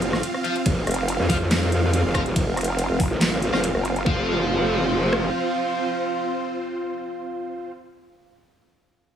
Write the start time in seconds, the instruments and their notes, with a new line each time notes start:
Already playing: wobble bass F#1, supersaw synth C4 F4 F5
0.02 closed hi-hat
0.13 cross-stick, snare
0.23 closed hi-hat, ride
0.34 cross-stick
0.44 distorted electric guitar F4 C5 F5, closed hi-hat
0.56 closed hi-hat
0.66 wobble bass F1, kick, closed hi-hat, ride
0.87 wobble bass F1, cross-stick, closed hi-hat
0.91 closed hi-hat
0.94 closed hi-hat
1.08 closed hi-hat, ride
1.19 wobble bass F2
1.29 distorted electric guitar F4 C5 F5, kick, open hi-hat
1.51 snare, clap, closed hi-hat, ride
1.72 closed hi-hat
1.93 closed hi-hat, ride
2.05 wobble bass F1
2.14 distorted electric guitar F4 C5 F5, kick, cross-stick, closed hi-hat
2.26 closed hi-hat
2.36 kick, closed hi-hat, ride
2.47 wobble bass F1
2.57 cross-stick, closed hi-hat
2.61 closed hi-hat
2.64 closed hi-hat
2.79 closed hi-hat, ride
2.90 wobble bass F1
3.00 kick, open hi-hat
3.11 wobble bass G#1
3.21 snare, clap, closed hi-hat, ride
3.42 closed hi-hat
3.53 wobble bass F1, distorted electric guitar F4 C5 F5, cross-stick, snare
3.64 closed hi-hat, ride
3.75 wobble bass F#1, cross-stick
3.85 closed hi-hat
3.96 closed hi-hat
4.06 wobble bass F1, supersaw synth C4 F4 C5, distorted electric guitar F4 C5 F5, kick
5.13 cross-stick